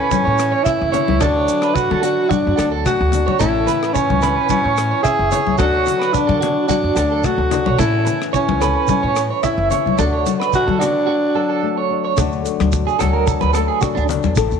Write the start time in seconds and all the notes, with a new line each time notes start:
Already playing: A2 E3 C#4 A4
0.00 B4
0.11 C#4 E4, kick, high conga, shekere
0.25 A2 C#5
0.38 E3, cross-stick, closed hi-hat, shekere
0.52 C#5
0.64 C#4 E4 E5, kick, cross-stick, shekere
0.81 F#1
0.92 C#4 C#5, closed hi-hat, low conga, shekere
1.08 C#2, high conga
1.20 D2 D3 D4 F#4 A4, kick, cross-stick, low conga, shekere
1.36 C#5
1.48 F#3, closed hi-hat, shekere
1.62 B4, cross-stick
1.75 D4 F#4, kick, shekere
1.91 D3 A4, high conga
2.03 D4 F#4, closed hi-hat, shekere
2.29 D4 F#4, kick, high conga, shekere
2.47 F#2
2.57 D2 F#3 A4, cross-stick, closed hi-hat, shekere
2.72 A4
2.86 A3 F#4, kick, cross-stick, shekere
3.01 D2
3.12 D4, closed hi-hat, low conga, shekere
3.27 D3 C#5, high conga
3.39 A1 A2 C#4 E4 A4, kick, cross-stick, shekere
3.67 E3 B4, closed hi-hat, low conga, shekere
3.83 cross-stick
3.93 C#4 E4 C#5, kick, shekere
4.10 C#2, kick, high conga
4.22 E4 B4, cross-stick, closed hi-hat, low conga, shekere
4.36 B4
4.49 C#4 E4, kick, high conga, shekere
4.64 A2 C#5
4.77 E3, cross-stick, closed hi-hat, shekere
4.91 C#5
5.03 C#4 G#4 E5, kick, cross-stick, shekere
5.19 F#1
5.31 E4 C#5, closed hi-hat, low conga, shekere
5.46 C#2, high conga
5.58 D2 D3 D4 F#4 A4, kick, cross-stick, shekere
5.73 C#5
5.86 F#3, closed hi-hat, low conga, shekere
5.99 B4, cross-stick
6.13 D4, kick, shekere
6.27 D3 A4, kick, high conga
6.41 F#4, closed hi-hat, low conga
6.67 D4 F#4, kick, high conga, shekere
6.84 F#2
6.96 D2 F#3 A4, cross-stick, closed hi-hat, shekere
7.12 A4
7.24 A3 F#4, kick, cross-stick, shekere
7.38 D2, muted clean electric guitar stroke
7.51 D4, closed hi-hat, low conga, shekere
7.66 B1 C#5, high conga
7.79 A1 A2 C#4 E4 A4, kick, cross-stick, shekere
8.05 E3, muted clean electric guitar stroke, closed hi-hat, low conga, shekere
8.22 cross-stick
8.33 C#4 E4 C#5, kick, shekere
8.49 C#2, kick, high conga
8.61 A4 B4, cross-stick, closed hi-hat, low conga, shekere
8.76 B4
8.88 C#4 E4, kick, high conga, shekere
9.03 A2 C#5
9.15 E3, cross-stick, closed hi-hat, shekere
9.30 C#5
9.43 C#4 E4 E5, kick, cross-stick, shekere
9.58 F#1
9.71 C#4 C#5, closed hi-hat, low conga, shekere
9.86 C#2, high conga
9.98 D2 D3 D4 F#4 A4, kick, cross-stick, low conga, shekere
10.13 C#5
10.25 F#3, closed hi-hat, high conga, low conga, shekere
10.40 B4, cross-stick
10.53 F#4, kick, shekere
10.67 D3 A4, high conga
10.79 D4 F#4, cross-stick, closed hi-hat, low conga, shekere
11.07 F#4, muted nylon-string guitar stroke
11.35 F#3 A4
11.49 A4
11.63 A3
11.78 C#5
11.90 D4
12.05 C#5
12.16 D2 D3 F#3 A3 D4 F#4, kick, cross-stick, shekere
12.32 shekere
12.45 A3, closed hi-hat, shekere
12.60 D2, cross-stick, high conga, shekere
12.72 D4, kick, shekere
12.87 G#4, shekere
12.99 D2 F#3 A4, cross-stick, closed hi-hat, high conga, low conga, shekere
13.13 A#4
13.26 A4, muted nylon-string guitar stroke, kick, shekere
13.41 D2 B4, high conga, shekere
13.53 A3 A4, cross-stick, closed hi-hat, shekere
13.68 G#4
13.81 D4 F#4, kick, cross-stick, shekere
13.95 D2 D4, shekere
14.09 D4, closed hi-hat, low conga, shekere
14.23 E2, high conga, shekere
14.36 A1 A2 A4, kick, cross-stick, shekere
14.51 E2, shekere